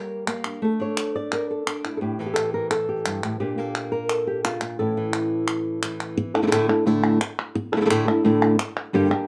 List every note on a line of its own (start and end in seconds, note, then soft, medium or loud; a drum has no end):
0.00 0.60 G3 medium
0.00 0.26 A#3 medium
0.00 0.28 A#4 medium
0.00 0.63 C#5 loud
0.27 0.60 A#3 medium
0.27 clap medium
0.44 0.80 D4 soft
0.44 clap medium
0.62 1.99 A3 medium
0.62 1.16 A4 medium
0.80 1.66 D4 soft
0.80 1.15 C#5 medium
0.97 clap medium
1.16 1.67 D5 medium
1.32 1.50 A#4 medium
1.32 clap medium
1.51 1.96 A4 medium
1.67 2.19 D4 medium
1.67 clap medium
1.85 2.00 E4 soft
1.85 clap medium
1.97 3.05 A2 medium
1.97 2.01 A4 medium
2.02 2.25 G4 medium
2.19 3.41 E3 medium
2.19 2.32 A4 medium
2.26 2.68 G4 medium
2.34 2.54 A4 medium
2.34 clap medium
2.54 2.70 A#4 medium
2.71 3.23 A4 medium
2.71 clap medium
2.89 3.39 G4 medium
3.06 3.23 G2 medium
3.06 clap medium
3.23 3.40 A2 soft
3.23 clap medium
3.40 4.60 A#2 medium
3.40 3.57 A#3 soft
3.40 4.78 D4 soft
3.40 3.92 G4 medium
3.58 4.77 A#3 medium
3.58 3.91 A4 medium
3.75 clap medium
3.92 4.09 A#4 medium
4.09 4.62 A4 medium
4.09 clap medium
4.27 4.44 G4 medium
4.44 4.62 C#3 soft
4.44 4.79 F4 medium
4.44 clap medium
4.61 4.79 A#2 medium
4.61 clap medium
4.79 6.16 A2 medium
4.79 4.96 E3 soft
4.79 6.16 C#4 soft
4.79 6.17 E4 soft
4.79 6.18 A4 medium
4.97 5.82 E3 medium
5.13 clap medium
5.48 clap medium
5.83 6.35 E3 medium
5.83 clap medium
6.00 clap medium
6.17 muted nylon-string guitar stroke medium
6.34 6.42 A3 soft
6.34 6.42 D4 soft
6.34 6.42 E4 soft
6.34 6.42 A4 soft
6.42 6.46 D3 medium
6.42 6.46 A3 soft
6.42 6.46 D4 soft
6.42 6.47 E4 medium
6.42 6.47 A4 medium
6.47 6.50 D3 medium
6.47 6.50 A3 medium
6.47 6.51 D4 medium
6.47 6.51 E4 medium
6.47 6.51 A4 medium
6.51 6.68 A2 medium
6.51 6.69 D3 medium
6.51 6.69 A3 medium
6.51 6.68 D4 medium
6.51 6.68 E4 medium
6.51 6.67 A4 medium
6.51 clap medium
6.69 6.85 A3 soft
6.69 6.86 D4 soft
6.69 6.86 E4 soft
6.69 6.86 A4 medium
6.86 7.20 A2 medium
6.86 7.20 D3 medium
6.86 7.20 A3 medium
6.86 7.20 D4 medium
6.86 7.20 E4 medium
6.86 7.20 A4 medium
7.21 muted nylon-string guitar stroke medium
7.21 clap medium
7.55 muted nylon-string guitar stroke medium
7.72 7.76 A3 soft
7.72 7.76 D4 soft
7.72 7.76 E4 medium
7.72 7.77 A4 medium
7.76 7.80 D3 medium
7.76 7.80 A3 medium
7.76 7.80 D4 medium
7.76 7.81 E4 medium
7.76 7.81 A4 medium
7.81 7.84 D3 medium
7.81 7.84 A3 medium
7.81 7.85 D4 medium
7.81 7.85 E4 medium
7.81 7.85 A4 medium
7.85 7.89 D3 medium
7.85 7.89 A3 medium
7.85 7.89 D4 medium
7.85 7.90 E4 medium
7.85 7.90 A4 medium
7.90 8.07 A2 medium
7.90 8.07 D3 medium
7.90 8.07 A3 medium
7.90 8.07 D4 medium
7.90 8.06 E4 medium
7.90 8.06 A4 medium
7.90 clap medium
8.07 8.24 A3 soft
8.07 8.24 D4 soft
8.07 8.24 E4 medium
8.07 8.24 A4 medium
8.07 clap soft
8.24 8.58 A2 medium
8.24 8.58 D3 medium
8.24 8.58 A3 medium
8.24 8.58 D4 medium
8.24 8.58 E4 medium
8.24 8.58 A4 medium
8.59 muted nylon-string guitar stroke medium
8.59 clap medium
8.93 9.10 G2 medium
8.93 9.10 D3 medium
8.93 9.10 G3 medium
8.93 9.11 A#3 medium
8.93 9.10 D4 medium
8.93 9.09 G4 loud
9.11 9.27 G3 soft
9.11 9.27 A#3 soft
9.11 9.27 D4 medium
9.11 9.26 G4 medium